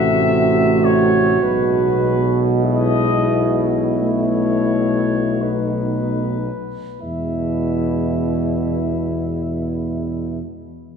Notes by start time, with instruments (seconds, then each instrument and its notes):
Already playing: tuba A1, trombone C3, euphonium A3, french horn section F#4, flugelhorn E5
0.84 flugelhorn C#5
1.42 tuba B1, trombone B2, euphonium G#3, flugelhorn B4
2.64 french horn section E4, flugelhorn D#5
3.98 euphonium A3, flugelhorn C#5
5.41 french horn section D#4, flugelhorn B4
7.01 tuba E2, trombone B2, euphonium G#3, french horn section E4, flugelhorn E5